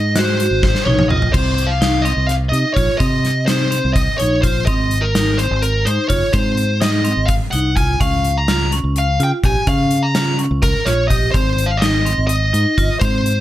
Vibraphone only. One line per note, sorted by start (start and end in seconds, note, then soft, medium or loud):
0.16 0.28 F#4 medium
0.40 0.64 F#4 medium
0.87 0.99 D#4 medium
1.10 1.23 F4 medium
1.33 1.58 C4 medium
1.81 1.94 D#4 medium
2.05 2.30 C4 medium
2.52 2.64 D#4 medium
2.76 2.88 F4 medium
3.00 3.24 C4 medium
3.47 3.60 D#4 medium
3.71 3.96 C4 medium
4.19 4.32 D#4 medium
4.43 4.56 F4 medium
4.67 4.92 C4 medium
5.15 5.27 D#4 medium
5.39 5.63 C4 medium
5.86 5.98 D#4 medium
6.09 6.22 F4 medium
6.33 6.58 C4 medium
6.80 6.93 D#4 medium
7.05 7.29 C4 medium
7.53 7.65 D#4 medium
7.76 7.89 F4 medium
8.00 8.25 C#4 medium
8.49 8.61 F4 medium
8.73 8.97 C#4 medium
9.20 9.32 F4 medium
9.44 9.57 G4 medium
9.68 9.92 C#4 medium
10.15 10.27 F4 medium
10.39 10.63 C#4 medium
10.86 10.99 F4 medium
11.10 11.23 G4 medium
11.34 11.59 C4 medium
11.82 11.94 D#4 medium
12.05 12.30 C4 medium
12.53 12.66 D#4 medium
12.78 12.90 F4 medium
13.01 13.26 C4 medium